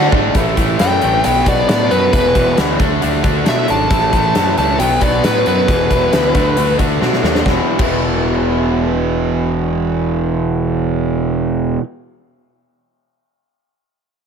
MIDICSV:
0, 0, Header, 1, 5, 480
1, 0, Start_track
1, 0, Tempo, 444774
1, 373, Time_signature, 4, 2, 24, 8
1, 15396, End_track
2, 0, Start_track
2, 0, Title_t, "Lead electric guitar"
2, 0, Program_c, 0, 29
2, 871, Note_on_c, 0, 79, 87
2, 1327, Note_off_c, 0, 79, 0
2, 1351, Note_on_c, 0, 79, 84
2, 1574, Note_off_c, 0, 79, 0
2, 1598, Note_on_c, 0, 74, 86
2, 1812, Note_off_c, 0, 74, 0
2, 1825, Note_on_c, 0, 74, 73
2, 2051, Note_off_c, 0, 74, 0
2, 2062, Note_on_c, 0, 71, 79
2, 2289, Note_off_c, 0, 71, 0
2, 2304, Note_on_c, 0, 71, 99
2, 2763, Note_off_c, 0, 71, 0
2, 3763, Note_on_c, 0, 76, 93
2, 3980, Note_off_c, 0, 76, 0
2, 3997, Note_on_c, 0, 81, 91
2, 4916, Note_off_c, 0, 81, 0
2, 4947, Note_on_c, 0, 81, 74
2, 5172, Note_off_c, 0, 81, 0
2, 5176, Note_on_c, 0, 79, 83
2, 5407, Note_off_c, 0, 79, 0
2, 5423, Note_on_c, 0, 74, 80
2, 5650, Note_off_c, 0, 74, 0
2, 5667, Note_on_c, 0, 71, 91
2, 5893, Note_off_c, 0, 71, 0
2, 5909, Note_on_c, 0, 71, 89
2, 7298, Note_off_c, 0, 71, 0
2, 15396, End_track
3, 0, Start_track
3, 0, Title_t, "Overdriven electric guitar"
3, 0, Program_c, 1, 29
3, 0, Note_on_c, 1, 50, 98
3, 0, Note_on_c, 1, 57, 105
3, 0, Note_on_c, 1, 62, 110
3, 127, Note_off_c, 1, 50, 0
3, 129, Note_off_c, 1, 57, 0
3, 136, Note_off_c, 1, 62, 0
3, 140, Note_on_c, 1, 50, 92
3, 142, Note_on_c, 1, 57, 96
3, 149, Note_on_c, 1, 62, 103
3, 362, Note_off_c, 1, 50, 0
3, 363, Note_off_c, 1, 57, 0
3, 366, Note_off_c, 1, 62, 0
3, 380, Note_on_c, 1, 45, 90
3, 388, Note_on_c, 1, 52, 94
3, 394, Note_on_c, 1, 57, 106
3, 604, Note_off_c, 1, 45, 0
3, 611, Note_off_c, 1, 52, 0
3, 615, Note_off_c, 1, 57, 0
3, 617, Note_on_c, 1, 45, 78
3, 624, Note_on_c, 1, 52, 75
3, 628, Note_on_c, 1, 57, 89
3, 841, Note_off_c, 1, 45, 0
3, 843, Note_off_c, 1, 52, 0
3, 851, Note_off_c, 1, 57, 0
3, 854, Note_on_c, 1, 45, 75
3, 856, Note_on_c, 1, 52, 80
3, 864, Note_on_c, 1, 57, 86
3, 1081, Note_off_c, 1, 45, 0
3, 1088, Note_off_c, 1, 57, 0
3, 1089, Note_off_c, 1, 52, 0
3, 1094, Note_on_c, 1, 45, 86
3, 1101, Note_on_c, 1, 57, 97
3, 1102, Note_on_c, 1, 52, 93
3, 1318, Note_off_c, 1, 45, 0
3, 1322, Note_off_c, 1, 52, 0
3, 1322, Note_off_c, 1, 57, 0
3, 1338, Note_on_c, 1, 47, 82
3, 1340, Note_on_c, 1, 54, 98
3, 1342, Note_on_c, 1, 59, 98
3, 1565, Note_off_c, 1, 47, 0
3, 1567, Note_off_c, 1, 54, 0
3, 1572, Note_off_c, 1, 59, 0
3, 1578, Note_on_c, 1, 47, 91
3, 1580, Note_on_c, 1, 54, 100
3, 1585, Note_on_c, 1, 59, 92
3, 1803, Note_off_c, 1, 47, 0
3, 1805, Note_off_c, 1, 54, 0
3, 1808, Note_off_c, 1, 59, 0
3, 1816, Note_on_c, 1, 47, 81
3, 1818, Note_on_c, 1, 54, 90
3, 1821, Note_on_c, 1, 59, 87
3, 2045, Note_off_c, 1, 47, 0
3, 2051, Note_off_c, 1, 54, 0
3, 2056, Note_off_c, 1, 59, 0
3, 2057, Note_on_c, 1, 47, 75
3, 2064, Note_on_c, 1, 54, 83
3, 2069, Note_on_c, 1, 59, 85
3, 2279, Note_off_c, 1, 47, 0
3, 2283, Note_off_c, 1, 54, 0
3, 2285, Note_off_c, 1, 59, 0
3, 2292, Note_on_c, 1, 40, 91
3, 2300, Note_on_c, 1, 47, 101
3, 2303, Note_on_c, 1, 52, 104
3, 2518, Note_off_c, 1, 40, 0
3, 2527, Note_off_c, 1, 47, 0
3, 2529, Note_off_c, 1, 52, 0
3, 2531, Note_on_c, 1, 40, 72
3, 2540, Note_on_c, 1, 47, 79
3, 2542, Note_on_c, 1, 52, 81
3, 2756, Note_off_c, 1, 40, 0
3, 2762, Note_off_c, 1, 47, 0
3, 2764, Note_off_c, 1, 52, 0
3, 2769, Note_on_c, 1, 40, 84
3, 2775, Note_on_c, 1, 47, 79
3, 2777, Note_on_c, 1, 52, 90
3, 2995, Note_off_c, 1, 40, 0
3, 2998, Note_off_c, 1, 47, 0
3, 2999, Note_off_c, 1, 52, 0
3, 3005, Note_on_c, 1, 50, 85
3, 3011, Note_on_c, 1, 62, 99
3, 3013, Note_on_c, 1, 57, 92
3, 3240, Note_off_c, 1, 50, 0
3, 3248, Note_off_c, 1, 57, 0
3, 3253, Note_on_c, 1, 50, 79
3, 3254, Note_off_c, 1, 62, 0
3, 3261, Note_on_c, 1, 57, 90
3, 3267, Note_on_c, 1, 62, 96
3, 3475, Note_off_c, 1, 50, 0
3, 3478, Note_off_c, 1, 57, 0
3, 3481, Note_off_c, 1, 62, 0
3, 3488, Note_on_c, 1, 50, 84
3, 3491, Note_on_c, 1, 57, 92
3, 3494, Note_on_c, 1, 62, 95
3, 3705, Note_off_c, 1, 50, 0
3, 3714, Note_off_c, 1, 57, 0
3, 3717, Note_off_c, 1, 62, 0
3, 3718, Note_on_c, 1, 50, 78
3, 3727, Note_on_c, 1, 57, 83
3, 3730, Note_on_c, 1, 62, 94
3, 3959, Note_off_c, 1, 50, 0
3, 3964, Note_off_c, 1, 57, 0
3, 3966, Note_off_c, 1, 62, 0
3, 3972, Note_on_c, 1, 50, 81
3, 3977, Note_on_c, 1, 57, 81
3, 3979, Note_on_c, 1, 62, 89
3, 4197, Note_off_c, 1, 50, 0
3, 4200, Note_off_c, 1, 57, 0
3, 4200, Note_off_c, 1, 62, 0
3, 4205, Note_on_c, 1, 45, 87
3, 4211, Note_on_c, 1, 52, 90
3, 4216, Note_on_c, 1, 57, 95
3, 4443, Note_off_c, 1, 45, 0
3, 4443, Note_off_c, 1, 52, 0
3, 4452, Note_off_c, 1, 57, 0
3, 4456, Note_on_c, 1, 45, 78
3, 4456, Note_on_c, 1, 52, 75
3, 4465, Note_on_c, 1, 57, 92
3, 4677, Note_off_c, 1, 45, 0
3, 4681, Note_off_c, 1, 52, 0
3, 4690, Note_off_c, 1, 57, 0
3, 4690, Note_on_c, 1, 45, 83
3, 4694, Note_on_c, 1, 52, 78
3, 4703, Note_on_c, 1, 57, 80
3, 4920, Note_off_c, 1, 45, 0
3, 4921, Note_off_c, 1, 52, 0
3, 4924, Note_off_c, 1, 57, 0
3, 4933, Note_on_c, 1, 45, 86
3, 4934, Note_on_c, 1, 52, 92
3, 4937, Note_on_c, 1, 57, 89
3, 5156, Note_off_c, 1, 45, 0
3, 5158, Note_off_c, 1, 52, 0
3, 5160, Note_off_c, 1, 57, 0
3, 5161, Note_on_c, 1, 47, 98
3, 5166, Note_on_c, 1, 54, 90
3, 5170, Note_on_c, 1, 59, 106
3, 5381, Note_off_c, 1, 47, 0
3, 5385, Note_off_c, 1, 54, 0
3, 5392, Note_off_c, 1, 59, 0
3, 5394, Note_on_c, 1, 47, 97
3, 5398, Note_on_c, 1, 54, 92
3, 5405, Note_on_c, 1, 59, 97
3, 5629, Note_off_c, 1, 47, 0
3, 5632, Note_off_c, 1, 54, 0
3, 5641, Note_off_c, 1, 59, 0
3, 5642, Note_on_c, 1, 47, 70
3, 5645, Note_on_c, 1, 54, 76
3, 5654, Note_on_c, 1, 59, 94
3, 5881, Note_off_c, 1, 47, 0
3, 5889, Note_off_c, 1, 54, 0
3, 5889, Note_off_c, 1, 59, 0
3, 5894, Note_on_c, 1, 47, 77
3, 5902, Note_on_c, 1, 54, 87
3, 5902, Note_on_c, 1, 59, 88
3, 6119, Note_off_c, 1, 47, 0
3, 6123, Note_off_c, 1, 54, 0
3, 6123, Note_off_c, 1, 59, 0
3, 6126, Note_on_c, 1, 40, 82
3, 6134, Note_on_c, 1, 47, 87
3, 6138, Note_on_c, 1, 52, 96
3, 6358, Note_off_c, 1, 40, 0
3, 6364, Note_off_c, 1, 52, 0
3, 6365, Note_off_c, 1, 47, 0
3, 6371, Note_on_c, 1, 40, 82
3, 6377, Note_on_c, 1, 52, 81
3, 6378, Note_on_c, 1, 47, 85
3, 6595, Note_off_c, 1, 47, 0
3, 6596, Note_off_c, 1, 40, 0
3, 6608, Note_off_c, 1, 52, 0
3, 6608, Note_on_c, 1, 47, 83
3, 6609, Note_on_c, 1, 40, 70
3, 6621, Note_on_c, 1, 52, 85
3, 6834, Note_off_c, 1, 47, 0
3, 6836, Note_off_c, 1, 40, 0
3, 6838, Note_on_c, 1, 50, 92
3, 6839, Note_off_c, 1, 52, 0
3, 6844, Note_on_c, 1, 57, 86
3, 6845, Note_on_c, 1, 62, 93
3, 7078, Note_off_c, 1, 50, 0
3, 7084, Note_off_c, 1, 57, 0
3, 7089, Note_off_c, 1, 62, 0
3, 7091, Note_on_c, 1, 50, 81
3, 7097, Note_on_c, 1, 57, 81
3, 7101, Note_on_c, 1, 62, 82
3, 7305, Note_off_c, 1, 50, 0
3, 7308, Note_off_c, 1, 57, 0
3, 7313, Note_off_c, 1, 62, 0
3, 7318, Note_on_c, 1, 50, 88
3, 7321, Note_on_c, 1, 57, 88
3, 7326, Note_on_c, 1, 62, 87
3, 7543, Note_off_c, 1, 50, 0
3, 7547, Note_off_c, 1, 57, 0
3, 7556, Note_on_c, 1, 50, 83
3, 7557, Note_off_c, 1, 62, 0
3, 7560, Note_on_c, 1, 57, 79
3, 7570, Note_on_c, 1, 62, 79
3, 7787, Note_off_c, 1, 50, 0
3, 7792, Note_off_c, 1, 57, 0
3, 7795, Note_off_c, 1, 62, 0
3, 7800, Note_on_c, 1, 50, 74
3, 7805, Note_on_c, 1, 57, 87
3, 7808, Note_on_c, 1, 62, 85
3, 8026, Note_on_c, 1, 40, 86
3, 8032, Note_off_c, 1, 50, 0
3, 8035, Note_off_c, 1, 57, 0
3, 8036, Note_off_c, 1, 62, 0
3, 8051, Note_on_c, 1, 47, 87
3, 8068, Note_on_c, 1, 52, 93
3, 8385, Note_off_c, 1, 40, 0
3, 8390, Note_on_c, 1, 40, 94
3, 8411, Note_off_c, 1, 47, 0
3, 8416, Note_on_c, 1, 47, 87
3, 8434, Note_off_c, 1, 52, 0
3, 8438, Note_on_c, 1, 52, 92
3, 12721, Note_off_c, 1, 40, 0
3, 12747, Note_off_c, 1, 47, 0
3, 12769, Note_off_c, 1, 52, 0
3, 15396, End_track
4, 0, Start_track
4, 0, Title_t, "Picked electric bass"
4, 0, Program_c, 2, 34
4, 133, Note_on_c, 2, 32, 91
4, 317, Note_off_c, 2, 32, 0
4, 379, Note_on_c, 2, 33, 94
4, 577, Note_off_c, 2, 33, 0
4, 622, Note_on_c, 2, 33, 85
4, 818, Note_off_c, 2, 33, 0
4, 873, Note_on_c, 2, 42, 89
4, 1064, Note_off_c, 2, 42, 0
4, 1113, Note_on_c, 2, 33, 85
4, 1304, Note_off_c, 2, 33, 0
4, 1360, Note_on_c, 2, 35, 87
4, 1548, Note_off_c, 2, 35, 0
4, 1585, Note_on_c, 2, 35, 83
4, 1779, Note_off_c, 2, 35, 0
4, 1830, Note_on_c, 2, 45, 88
4, 2022, Note_off_c, 2, 45, 0
4, 2068, Note_on_c, 2, 42, 89
4, 2261, Note_off_c, 2, 42, 0
4, 2303, Note_on_c, 2, 28, 90
4, 2498, Note_off_c, 2, 28, 0
4, 2543, Note_on_c, 2, 28, 82
4, 2738, Note_off_c, 2, 28, 0
4, 2789, Note_on_c, 2, 38, 90
4, 2982, Note_off_c, 2, 38, 0
4, 3018, Note_on_c, 2, 38, 80
4, 3215, Note_off_c, 2, 38, 0
4, 3269, Note_on_c, 2, 38, 93
4, 3462, Note_off_c, 2, 38, 0
4, 3498, Note_on_c, 2, 38, 84
4, 3695, Note_off_c, 2, 38, 0
4, 3749, Note_on_c, 2, 47, 88
4, 3942, Note_off_c, 2, 47, 0
4, 3986, Note_on_c, 2, 32, 82
4, 4180, Note_off_c, 2, 32, 0
4, 4218, Note_on_c, 2, 33, 88
4, 4415, Note_off_c, 2, 33, 0
4, 4460, Note_on_c, 2, 33, 89
4, 4657, Note_off_c, 2, 33, 0
4, 4707, Note_on_c, 2, 42, 84
4, 4901, Note_off_c, 2, 42, 0
4, 4942, Note_on_c, 2, 37, 85
4, 5138, Note_off_c, 2, 37, 0
4, 5176, Note_on_c, 2, 35, 87
4, 5374, Note_off_c, 2, 35, 0
4, 5414, Note_on_c, 2, 35, 83
4, 5613, Note_off_c, 2, 35, 0
4, 5661, Note_on_c, 2, 45, 78
4, 5858, Note_off_c, 2, 45, 0
4, 5902, Note_on_c, 2, 42, 82
4, 6098, Note_off_c, 2, 42, 0
4, 6136, Note_on_c, 2, 28, 91
4, 6335, Note_off_c, 2, 28, 0
4, 6379, Note_on_c, 2, 28, 86
4, 6576, Note_off_c, 2, 28, 0
4, 6621, Note_on_c, 2, 38, 89
4, 6818, Note_off_c, 2, 38, 0
4, 6858, Note_on_c, 2, 38, 83
4, 7056, Note_off_c, 2, 38, 0
4, 7094, Note_on_c, 2, 38, 84
4, 7294, Note_off_c, 2, 38, 0
4, 7334, Note_on_c, 2, 38, 75
4, 7534, Note_off_c, 2, 38, 0
4, 7575, Note_on_c, 2, 47, 79
4, 7775, Note_off_c, 2, 47, 0
4, 7805, Note_on_c, 2, 39, 81
4, 8009, Note_off_c, 2, 39, 0
4, 8056, Note_on_c, 2, 28, 82
4, 8188, Note_off_c, 2, 28, 0
4, 8409, Note_on_c, 2, 28, 84
4, 12698, Note_off_c, 2, 28, 0
4, 15396, End_track
5, 0, Start_track
5, 0, Title_t, "Drums"
5, 134, Note_on_c, 9, 36, 93
5, 242, Note_off_c, 9, 36, 0
5, 374, Note_on_c, 9, 42, 82
5, 376, Note_on_c, 9, 36, 101
5, 482, Note_off_c, 9, 42, 0
5, 484, Note_off_c, 9, 36, 0
5, 617, Note_on_c, 9, 42, 67
5, 618, Note_on_c, 9, 36, 82
5, 725, Note_off_c, 9, 36, 0
5, 725, Note_off_c, 9, 42, 0
5, 856, Note_on_c, 9, 42, 84
5, 862, Note_on_c, 9, 38, 100
5, 964, Note_off_c, 9, 42, 0
5, 970, Note_off_c, 9, 38, 0
5, 1095, Note_on_c, 9, 42, 59
5, 1203, Note_off_c, 9, 42, 0
5, 1338, Note_on_c, 9, 42, 92
5, 1446, Note_off_c, 9, 42, 0
5, 1578, Note_on_c, 9, 42, 64
5, 1580, Note_on_c, 9, 36, 90
5, 1686, Note_off_c, 9, 42, 0
5, 1687, Note_off_c, 9, 36, 0
5, 1823, Note_on_c, 9, 42, 87
5, 1828, Note_on_c, 9, 38, 112
5, 1931, Note_off_c, 9, 42, 0
5, 1936, Note_off_c, 9, 38, 0
5, 2064, Note_on_c, 9, 42, 60
5, 2172, Note_off_c, 9, 42, 0
5, 2301, Note_on_c, 9, 36, 101
5, 2301, Note_on_c, 9, 42, 76
5, 2408, Note_off_c, 9, 42, 0
5, 2409, Note_off_c, 9, 36, 0
5, 2539, Note_on_c, 9, 36, 81
5, 2539, Note_on_c, 9, 42, 62
5, 2647, Note_off_c, 9, 36, 0
5, 2647, Note_off_c, 9, 42, 0
5, 2779, Note_on_c, 9, 42, 76
5, 2785, Note_on_c, 9, 38, 98
5, 2887, Note_off_c, 9, 42, 0
5, 2893, Note_off_c, 9, 38, 0
5, 3017, Note_on_c, 9, 42, 53
5, 3019, Note_on_c, 9, 36, 97
5, 3125, Note_off_c, 9, 42, 0
5, 3127, Note_off_c, 9, 36, 0
5, 3260, Note_on_c, 9, 42, 79
5, 3368, Note_off_c, 9, 42, 0
5, 3496, Note_on_c, 9, 42, 58
5, 3497, Note_on_c, 9, 36, 87
5, 3604, Note_off_c, 9, 42, 0
5, 3605, Note_off_c, 9, 36, 0
5, 3733, Note_on_c, 9, 42, 77
5, 3738, Note_on_c, 9, 38, 109
5, 3841, Note_off_c, 9, 42, 0
5, 3846, Note_off_c, 9, 38, 0
5, 3974, Note_on_c, 9, 42, 58
5, 4081, Note_off_c, 9, 42, 0
5, 4214, Note_on_c, 9, 42, 72
5, 4216, Note_on_c, 9, 36, 99
5, 4322, Note_off_c, 9, 42, 0
5, 4324, Note_off_c, 9, 36, 0
5, 4455, Note_on_c, 9, 42, 61
5, 4456, Note_on_c, 9, 36, 77
5, 4563, Note_off_c, 9, 42, 0
5, 4564, Note_off_c, 9, 36, 0
5, 4696, Note_on_c, 9, 42, 78
5, 4701, Note_on_c, 9, 38, 94
5, 4804, Note_off_c, 9, 42, 0
5, 4809, Note_off_c, 9, 38, 0
5, 4938, Note_on_c, 9, 42, 58
5, 5046, Note_off_c, 9, 42, 0
5, 5177, Note_on_c, 9, 42, 84
5, 5285, Note_off_c, 9, 42, 0
5, 5407, Note_on_c, 9, 42, 64
5, 5413, Note_on_c, 9, 36, 82
5, 5515, Note_off_c, 9, 42, 0
5, 5521, Note_off_c, 9, 36, 0
5, 5655, Note_on_c, 9, 42, 84
5, 5660, Note_on_c, 9, 38, 98
5, 5762, Note_off_c, 9, 42, 0
5, 5768, Note_off_c, 9, 38, 0
5, 5892, Note_on_c, 9, 42, 61
5, 6000, Note_off_c, 9, 42, 0
5, 6134, Note_on_c, 9, 36, 100
5, 6135, Note_on_c, 9, 42, 71
5, 6242, Note_off_c, 9, 36, 0
5, 6243, Note_off_c, 9, 42, 0
5, 6374, Note_on_c, 9, 36, 77
5, 6375, Note_on_c, 9, 42, 57
5, 6481, Note_off_c, 9, 36, 0
5, 6483, Note_off_c, 9, 42, 0
5, 6613, Note_on_c, 9, 42, 78
5, 6618, Note_on_c, 9, 38, 96
5, 6721, Note_off_c, 9, 42, 0
5, 6726, Note_off_c, 9, 38, 0
5, 6851, Note_on_c, 9, 36, 93
5, 6854, Note_on_c, 9, 42, 54
5, 6959, Note_off_c, 9, 36, 0
5, 6962, Note_off_c, 9, 42, 0
5, 7089, Note_on_c, 9, 42, 80
5, 7196, Note_off_c, 9, 42, 0
5, 7330, Note_on_c, 9, 36, 76
5, 7330, Note_on_c, 9, 42, 55
5, 7438, Note_off_c, 9, 36, 0
5, 7438, Note_off_c, 9, 42, 0
5, 7575, Note_on_c, 9, 38, 56
5, 7683, Note_off_c, 9, 38, 0
5, 7697, Note_on_c, 9, 38, 55
5, 7805, Note_off_c, 9, 38, 0
5, 7816, Note_on_c, 9, 38, 76
5, 7924, Note_off_c, 9, 38, 0
5, 7936, Note_on_c, 9, 38, 78
5, 8044, Note_off_c, 9, 38, 0
5, 8049, Note_on_c, 9, 36, 91
5, 8058, Note_on_c, 9, 38, 74
5, 8157, Note_off_c, 9, 36, 0
5, 8166, Note_off_c, 9, 38, 0
5, 8409, Note_on_c, 9, 36, 99
5, 8411, Note_on_c, 9, 49, 79
5, 8517, Note_off_c, 9, 36, 0
5, 8519, Note_off_c, 9, 49, 0
5, 15396, End_track
0, 0, End_of_file